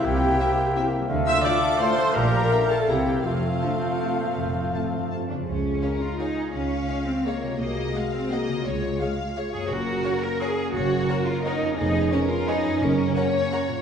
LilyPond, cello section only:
\new Staff \with { instrumentName = "Cello section" } { \time 3/4 \key f \major \tempo 4 = 169 c4 r2 | d4 r2 | bes,4 r4 c4 | f,4 d8 c4 bes,8~ |
bes,8 a,4 g,4 <f, d'>8 | \key des \major des'4. f'8 ees'4 | des'4. c'8 bes4 | bes4 aes8 c'8 bes4 |
aes2 r8 aes'8 | ges'4. bes'8 aes'4 | ges'4. f'8 ees'4 | ees'4 des'8 f'8 ees'4 |
des'2 r4 | }